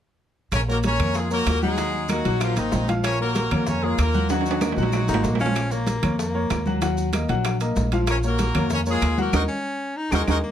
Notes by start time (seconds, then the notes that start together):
0.52 A#1 C#4 A#4 C#5, high bongo, high conga, high timbale, claves, maracas
0.68 A#3 F#4 A#4 C#5, high conga
0.83 C#4 A#4 C#5, high bongo, high conga, high timbale, maracas
0.99 F2 A#3 A#4 C#5, high conga, low conga, high timbale, claves, maracas
1.14 G#3 F4 G#4, high bongo, high conga, maracas
1.31 A#3 F#4 A#4 C#5, high conga, maracas
1.46 D#2, high bongo, low bongo, high conga, high timbale, low timbale, claves, maracas
1.62 F#3 G#3 D#4 F#4 G#4 F#5, high conga, maracas
1.77 F#3 F#4 F#5, high bongo, high timbale, maracas
1.94 high bongo, high conga
2.09 F#3 A#3 D#4 F#4 A#4 D#5, high bongo, high conga, high timbale, claves, maracas
2.25 A#1 F#3 F#4 F#5, high conga, high timbale, maracas
2.40 F3 A#3 F4, high bongo, high conga, high timbale, claves, maracas
2.56 G#1 D#3 A#3 C4 D#4 A#4 D#5, high conga, high timbale, maracas
2.72 A#1, high bongo, low bongo, high conga, low timbale, maracas
2.88 F3 F4 F5, high bongo, high conga, high timbale, maracas
3.03 C#4 A#4 C#5, high bongo, high conga, high timbale, claves, maracas
3.20 A#3 F#4 A#4 C#5, high conga
3.35 high bongo, high conga, high timbale, maracas
3.51 F2 A#3 A#4 C#5, high conga, low conga, high timbale, claves, maracas
3.67 C#4 A#4 C#5, high bongo, high conga, low conga, maracas
3.83 G#3 A#3 F4 G#4 A#4 C#5, high conga
3.98 D#2 A#3 F4 A#4, high bongo, low bongo, high conga, high timbale, claves, maracas
4.14 F#3 F#4 F#5, high conga, maracas
4.29 F#3 D#4 F#4 F#5, high bongo, high conga, high timbale, maracas
4.41 high timbale
4.46 high bongo, high conga, maracas
4.51 high timbale
4.61 A#3 A#4 D#5, high bongo, high conga, high timbale, claves, maracas
4.72 low timbale
4.76 A#1 F#3 D#4 F#4 F#5, high bongo, high conga, maracas
4.83 low timbale
4.92 high bongo, high conga, low timbale, claves, maracas
5.08 G#1 A#3 D#4 A#4 D#5, high bongo, high conga, maracas
5.14 low timbale
5.23 A#1 A#3, high bongo, high conga, low timbale, maracas
5.35 low timbale
5.39 F3 C#4 F4 F5, low bongo, high conga, maracas
5.46 low timbale
5.56 high bongo, high timbale, claves, maracas
5.71 A#3 A#4 C#5, high conga, maracas
5.87 high bongo, high conga, high timbale, maracas
6.03 F2 A#3 A#4 C#5, high conga, low conga, high timbale, claves, maracas
6.18 A#3, high bongo, high conga, maracas
6.34 A#3 A#4 C#5, high conga
6.50 D#2, high bongo, low bongo, high conga, high timbale, low timbale, claves, maracas
6.66 F#3 F#4 F#5, high conga, maracas
6.82 F#3 F#4 F#5, high bongo, high timbale, maracas
6.97 high bongo, high conga, maracas
7.13 A#3 A#4 D#5, high bongo, high conga, high timbale, claves, maracas
7.29 A#1 F#3 F#4 F#5, high bongo, high conga, high timbale, maracas
7.45 high bongo, high conga, high timbale, claves, maracas
7.60 A#3 A#4 D#5, high conga, high timbale, maracas
7.76 A#1, high bongo, low bongo, high conga, maracas
7.92 F3 F4 F5, high bongo, high conga, high timbale, maracas
8.07 C#4 A#4 C#5, high bongo, high conga, high timbale, claves, maracas
8.23 A#3 F#4 A#4 C#5, high conga, maracas
8.39 high bongo, high conga, high timbale, maracas
8.54 F2 A#3 A#4 C#5, high conga, low conga, high timbale, claves, maracas
8.70 C#4 A#4 C#5, high bongo, high conga, low conga, maracas
8.86 G#3 A#3 F4 G#4 A#4 C#5, high conga, maracas
9.01 D#2, high bongo, low bongo, high conga, high timbale, claves, maracas
9.18 F#3 A#3 F#4 A#4 F#5, high conga, maracas
9.33 D#2 D#4 F#4 A#4 D#5, high bongo, high conga, high timbale, claves, maracas
9.48 C#4
9.97 D#4
10.12 D#2 G#3 D#4 F#4 A#4 D#5, high bongo, high conga, high timbale, claves, maracas
10.27 D#2 D#4 F#4 A#4 D#5, high bongo, high conga, high timbale, claves, maracas
10.44 A#3